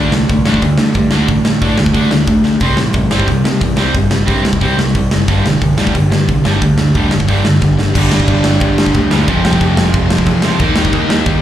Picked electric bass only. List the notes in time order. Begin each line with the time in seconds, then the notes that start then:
Already playing: D2
0.11 C2
0.30 C2
0.46 A1
0.62 D2
0.78 D3
0.95 G2
1.11 D2
1.29 A1
1.62 A2
1.79 D2
1.95 D2
2.12 D2
2.27 D2
2.44 D2
2.61 C2
2.77 A1
2.94 A1
3.11 G1
3.27 C2
3.44 C3
3.61 E2
3.78 C2
3.95 G1
4.28 G2
4.45 C2
4.61 C2
4.77 C2
4.95 C2
5.12 F#1
5.28 G1
5.44 E1
5.62 E1
5.77 D2
5.95 G1
6.11 G2
6.28 C2
6.45 G1
6.62 D2
6.95 D2
7.12 G1
7.29 G1
7.46 G1
7.62 G1
7.79 G1
7.95 G1
8.12 G1
8.28 G1
8.44 G1
8.61 G2
8.95 D2
9.12 D2
9.28 F1
9.44 F1
9.61 F1
9.77 F1
9.94 F1
10.27 E2
10.60 D#2
10.75 D#2
10.93 D#2
11.08 D#2
11.27 D#3